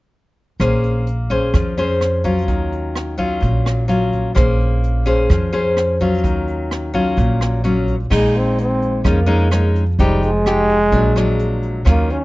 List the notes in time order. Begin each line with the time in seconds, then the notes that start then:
0.60 A#1 A#3 C#4 G#4 C5, kick, cross-stick, closed hi-hat
0.83 closed hi-hat
1.07 closed hi-hat
1.30 C#4 G#4 C5, kick, closed hi-hat
1.54 F2 F3, kick, cross-stick, closed hi-hat
1.77 C#4 G#4 C5, closed hi-hat
2.01 cross-stick, closed hi-hat
2.24 F#3 C#4 F4, kick, closed hi-hat
2.48 D#2 D#3, kick, closed hi-hat
2.72 closed hi-hat
2.96 cross-stick, closed hi-hat
3.18 F#3 C#4 F4, kick, closed hi-hat
3.40 A#1 A#2, kick, closed hi-hat
3.66 cross-stick, closed hi-hat
3.88 F#3 C#4 F4, closed hi-hat
4.13 kick, closed hi-hat
4.35 A#1 A#3 C#4 G#4 C5, kick, cross-stick, closed hi-hat
4.60 closed hi-hat
4.83 closed hi-hat
5.06 C#4 G#4 C5, kick, closed hi-hat
5.29 F2 F3, kick, cross-stick, closed hi-hat
5.53 C#4 G#4 C5, closed hi-hat
5.77 cross-stick, closed hi-hat
6.01 F#3 C#4 F4, kick, closed hi-hat
6.24 D#2 D#3, kick, closed hi-hat
6.48 closed hi-hat
6.71 cross-stick, closed hi-hat
6.94 F#3 C#4 F4, kick, closed hi-hat
7.17 A#1 A#2, kick, closed hi-hat
7.41 cross-stick, closed hi-hat
7.64 F#3 C#4 F4, closed hi-hat
7.88 kick, closed hi-hat
8.10 A#1 A#2 G#3 D#4, kick, cross-stick, crash
8.35 C4, closed hi-hat
8.58 C4, closed hi-hat
8.82 closed hi-hat
9.04 F2 F3 G#3 C#4 D#4, kick, cross-stick, closed hi-hat
9.09 A#3
9.26 G#3 C#4 D#4, closed hi-hat
9.51 G#3 C#4 D#4, cross-stick, closed hi-hat
9.76 closed hi-hat
9.99 F1 F3 G3 G#3 D#4 G4, kick, closed hi-hat
10.23 G#3, closed hi-hat
10.46 G#3 D#4 G4, cross-stick, closed hi-hat
10.69 closed hi-hat
10.92 A#1 A#2 F#3 G#3 D4, kick, closed hi-hat
11.16 F#3 G#3 D4, cross-stick, closed hi-hat
11.39 closed hi-hat
11.63 closed hi-hat
11.85 D#2 D#3 F#3 A#3 C#4 F4, kick, cross-stick, closed hi-hat
12.10 C#4, closed hi-hat